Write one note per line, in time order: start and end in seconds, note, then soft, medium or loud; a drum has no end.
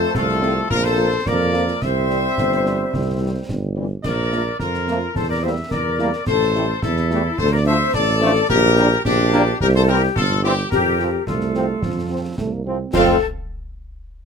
0.00 0.10 F3 medium
0.00 0.11 A3 medium
0.00 0.15 A4 loud
0.00 0.12 C5 loud
0.15 0.61 C2 loud
0.15 0.67 F3 medium
0.15 0.67 A3 medium
0.15 0.69 F4 loud
0.15 0.71 A4 loud
0.15 concert bass drum medium
0.15 snare medium
0.29 snare medium
0.42 0.52 A3 medium
0.42 0.52 C4 medium
0.42 0.52 F4 loud
0.42 snare medium
0.70 1.17 A#1 loud
0.70 1.12 F3 medium
0.70 1.11 A#3 medium
0.70 0.76 F4 loud
0.70 0.83 A#4 loud
0.70 concert bass drum medium
0.70 snare medium
0.84 1.23 A4 loud
0.84 1.26 C5 loud
0.97 1.08 F3 medium
0.97 1.08 A#3 medium
0.97 1.08 F4 medium
1.26 1.73 F2 loud
1.26 1.79 F3 medium
1.26 1.78 A#3 medium
1.26 1.78 A#4 loud
1.26 1.82 D5 loud
1.26 concert bass drum medium
1.26 snare medium
1.53 1.64 F3 medium
1.53 1.64 A#3 medium
1.53 1.64 F4 medium
1.53 snare medium
1.68 snare medium
1.81 2.28 C2 medium
1.81 3.77 G3 medium
1.81 3.77 C4 medium
1.81 3.45 C5 loud
1.81 3.49 E5 loud
1.81 concert bass drum medium
1.81 snare medium
1.81 crash soft
2.09 2.19 E3 medium
2.09 2.19 G3 medium
2.09 2.19 C4 medium
2.09 snare medium
2.37 2.84 G1 medium
2.37 concert bass drum medium
2.37 snare medium
2.52 snare soft
2.65 2.75 E3 medium
2.65 2.75 G3 medium
2.65 2.75 C4 medium
2.65 snare medium
2.93 3.40 C2 medium
2.93 concert bass drum medium
2.93 snare medium
3.20 3.30 E3 medium
3.20 3.30 G3 medium
3.20 3.30 C4 medium
3.49 3.95 G1 medium
3.49 concert bass drum medium
3.49 snare medium
3.76 3.87 E3 medium
3.76 3.86 G3 medium
3.76 3.86 C4 medium
4.03 4.50 A#1 loud
4.03 4.56 A#4 loud
4.03 4.56 D5 loud
4.03 concert bass drum medium
4.03 snare medium
4.03 crash medium
4.32 4.42 F3 medium
4.32 4.42 A3 medium
4.32 4.42 A#3 medium
4.32 4.42 F4 medium
4.32 snare medium
4.60 5.06 F2 medium
4.60 5.16 F4 medium
4.60 5.12 A#4 loud
4.60 concert bass drum medium
4.60 snare medium
4.74 snare medium
4.88 4.97 F3 medium
4.88 4.98 F3 medium
4.88 4.98 A3 medium
4.88 4.98 A#3 medium
4.88 4.98 F4 medium
4.88 snare medium
5.15 5.62 E2 medium
5.15 5.28 A4 loud
5.15 5.30 C5 loud
5.15 concert bass drum medium
5.15 snare medium
5.28 5.42 A#4 loud
5.28 5.43 D5 loud
5.42 5.53 G3 medium
5.42 5.53 A#3 medium
5.42 5.54 A#3 medium
5.42 5.53 E4 medium
5.42 5.49 C5 loud
5.42 5.72 E5 medium
5.69 6.13 E2 medium
5.69 6.22 A#4 medium
5.69 6.23 D5 loud
5.69 concert bass drum medium
5.69 snare medium
5.99 6.09 G3 medium
5.99 6.10 G3 medium
5.99 6.09 A#3 medium
5.99 6.10 A#3 medium
5.99 6.09 E4 medium
5.99 snare medium
6.13 snare medium
6.26 6.73 A1 loud
6.26 6.78 A4 loud
6.26 6.79 C5 loud
6.26 concert bass drum medium
6.26 snare medium
6.26 crash soft
6.55 6.64 G3 medium
6.55 6.65 G3 medium
6.55 6.65 A3 medium
6.55 6.65 E4 medium
6.55 snare medium
6.82 7.29 E2 loud
6.82 7.34 E4 loud
6.82 7.34 A4 loud
6.82 concert bass drum medium
6.82 snare medium
6.96 snare medium
7.10 7.20 G3 medium
7.10 7.21 G3 loud
7.10 7.20 A3 medium
7.10 7.21 A3 medium
7.10 7.20 E4 medium
7.10 snare medium
7.38 7.85 D2 loud
7.38 7.52 A4 loud
7.38 7.51 C5 loud
7.38 concert bass drum medium
7.38 snare medium
7.52 7.58 A#4 loud
7.52 7.66 D5 loud
7.65 7.76 F3 medium
7.65 7.76 F3 loud
7.65 7.76 A3 medium
7.65 7.75 D4 medium
7.65 7.92 C5 loud
7.65 7.92 E5 loud
7.93 8.40 A1 loud
7.93 8.49 A4 loud
7.93 8.45 D5 loud
7.93 concert bass drum medium
7.93 snare medium
8.21 8.31 F3 loud
8.21 8.32 F3 loud
8.21 8.31 A3 loud
8.21 8.32 A3 loud
8.21 8.31 D4 loud
8.21 snare medium
8.36 snare medium
8.48 8.96 A#1 loud
8.48 9.01 G4 loud
8.48 9.01 A#4 loud
8.48 concert bass drum medium
8.48 snare medium
8.48 crash soft
8.77 8.87 G3 loud
8.77 8.87 G3 medium
8.77 8.87 A#3 medium
8.77 8.88 D4 medium
8.77 snare medium
9.05 9.52 A#1 loud
9.05 9.57 D4 loud
9.05 9.57 G4 loud
9.05 concert bass drum medium
9.05 snare loud
9.19 snare medium
9.32 9.43 G3 loud
9.32 9.42 A#3 loud
9.32 9.43 D4 loud
9.32 snare medium
9.60 10.08 C2 loud
9.60 9.75 G4 loud
9.60 9.67 A#4 loud
9.60 concert bass drum medium
9.60 snare medium
9.75 9.88 A4 loud
9.75 9.81 C5 loud
9.87 9.99 E3 loud
9.87 9.98 G3 medium
9.87 9.98 C4 medium
9.87 9.98 E4 medium
9.87 10.17 G4 loud
9.87 10.01 A#4 loud
10.16 10.63 G1 loud
10.16 10.44 F4 loud
10.16 10.42 A4 loud
10.16 concert bass drum medium
10.16 snare medium
10.43 10.54 E3 medium
10.43 10.53 G3 medium
10.43 10.53 C4 medium
10.43 10.54 C4 loud
10.43 10.53 E4 medium
10.43 10.50 E4 loud
10.43 10.70 G4 loud
10.43 snare medium
10.58 snare medium
10.70 11.18 F2 loud
10.70 11.23 G4 loud
10.70 11.23 A#4 loud
10.70 concert bass drum medium
10.70 snare medium
10.70 crash soft
10.99 11.09 F3 medium
10.99 11.09 C4 medium
10.99 11.09 F4 medium
10.99 snare medium
11.26 11.74 C2 medium
11.26 11.84 A3 medium
11.26 12.34 F4 medium
11.26 12.38 A4 medium
11.26 concert bass drum medium
11.26 snare medium
11.41 snare medium
11.54 11.64 F3 medium
11.54 11.65 F3 medium
11.54 11.65 C4 medium
11.54 11.64 F4 medium
11.54 snare medium
11.82 12.29 F2 medium
11.82 12.37 F3 medium
11.82 concert bass drum medium
11.82 snare medium
12.09 12.20 F3 medium
12.09 12.21 F3 medium
12.09 12.20 C4 medium
12.09 12.21 C4 medium
12.09 12.20 F4 medium
12.38 12.85 C2 medium
12.38 12.54 A3 medium
12.38 concert bass drum medium
12.38 snare medium
12.52 12.64 A#3 medium
12.65 12.76 F3 medium
12.65 12.91 C4 medium
12.65 12.76 C4 medium
12.65 12.77 C4 medium
12.65 12.76 F4 medium
12.93 13.17 F2 loud
12.93 13.17 A3 medium
12.93 13.18 A3 loud
12.93 13.17 C4 loud
12.93 13.18 C4 loud
12.93 13.17 F4 medium
12.93 13.25 A4 loud
12.93 13.17 F5 loud
12.93 concert bass drum loud
12.93 snare loud
12.93 crash medium